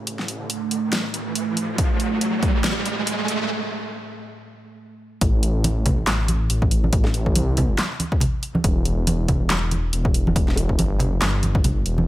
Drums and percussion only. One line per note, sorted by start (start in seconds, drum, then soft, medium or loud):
0.07 closed hi-hat medium
0.19 snare soft
0.28 closed hi-hat medium
0.50 closed hi-hat medium
0.71 closed hi-hat medium
0.93 snare loud
0.93 closed hi-hat medium
1.14 closed hi-hat medium
1.35 closed hi-hat medium
1.57 closed hi-hat medium
1.78 kick loud
1.78 closed hi-hat medium
2.00 closed hi-hat medium
2.21 closed hi-hat medium
2.43 kick loud
2.43 closed hi-hat soft
2.64 snare loud
2.64 closed hi-hat medium
2.85 closed hi-hat soft
3.07 closed hi-hat medium
3.28 closed hi-hat medium
5.21 kick loud
5.21 closed hi-hat medium
5.43 closed hi-hat medium
5.64 closed hi-hat medium
5.64 high conga loud
5.86 kick medium
5.86 closed hi-hat medium
5.86 low conga loud
6.07 snare loud
6.07 clap medium
6.07 closed hi-hat medium
6.28 closed hi-hat medium
6.28 high conga medium
6.50 closed hi-hat medium
6.62 kick loud
6.71 closed hi-hat medium
6.84 high conga medium
6.93 kick loud
6.93 closed hi-hat medium
7.04 snare soft
7.04 high bongo medium
7.14 closed hi-hat medium
7.26 kick medium
7.36 closed hi-hat medium
7.36 high conga loud
7.57 closed hi-hat medium
7.57 low conga loud
7.78 snare loud
7.78 clap medium
7.78 closed hi-hat medium
8.00 closed hi-hat medium
8.00 high conga medium
8.12 kick loud
8.20 closed hi-hat medium
8.20 low conga medium
8.43 closed hi-hat medium
8.55 high conga loud
8.64 kick loud
8.64 closed hi-hat medium
8.85 closed hi-hat medium
9.07 closed hi-hat medium
9.07 high conga loud
9.28 kick medium
9.28 closed hi-hat medium
9.28 low conga medium
9.50 snare loud
9.50 clap medium
9.50 closed hi-hat medium
9.71 closed hi-hat medium
9.71 high conga medium
9.93 closed hi-hat medium
10.05 kick loud
10.14 closed hi-hat medium
10.27 high conga loud
10.36 kick loud
10.36 closed hi-hat medium
10.48 snare soft
10.48 high bongo soft
10.56 closed hi-hat medium
10.56 high bongo medium
10.69 kick medium
10.79 closed hi-hat medium
10.79 high conga medium
10.99 closed hi-hat medium
10.99 low conga medium
11.22 snare loud
11.22 clap medium
11.22 closed hi-hat medium
11.43 closed hi-hat soft
11.43 high conga medium
11.55 kick loud
11.64 closed hi-hat medium
11.64 low conga medium
11.86 closed hi-hat medium
11.98 high conga medium